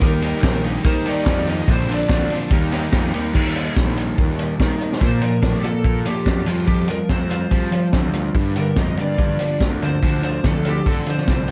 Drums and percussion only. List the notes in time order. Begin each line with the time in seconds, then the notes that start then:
0.02 kick
0.22 open hi-hat
0.41 kick, snare, clap
0.64 open hi-hat
0.85 kick
1.06 open hi-hat
1.25 kick, snare, clap
1.47 open hi-hat
1.68 kick
1.89 open hi-hat
2.09 kick, snare, clap
2.30 open hi-hat
2.51 kick
2.72 snare, clap, open hi-hat
2.92 kick, snare, clap
3.14 open hi-hat
3.35 kick, crash
3.56 closed hi-hat
3.77 kick, snare
3.97 closed hi-hat
4.18 kick
4.39 closed hi-hat
4.60 kick, snare
4.81 closed hi-hat
4.92 snare
5.01 kick
5.22 closed hi-hat
5.43 kick, snare
5.64 closed hi-hat
5.85 kick
6.06 closed hi-hat
6.26 kick, snare
6.46 closed hi-hat
6.67 kick
6.88 closed hi-hat
7.09 kick, snare
7.31 closed hi-hat
7.51 kick
7.72 closed hi-hat
7.92 kick, snare
8.13 closed hi-hat
8.35 kick
8.56 closed hi-hat
8.76 kick, snare
8.97 closed hi-hat
9.19 kick
9.39 closed hi-hat
9.61 kick, snare
9.82 closed hi-hat
10.03 kick
10.23 closed hi-hat
10.44 kick, snare
10.65 closed hi-hat
10.86 kick
11.06 closed hi-hat
11.17 snare
11.28 kick, snare
11.48 closed hi-hat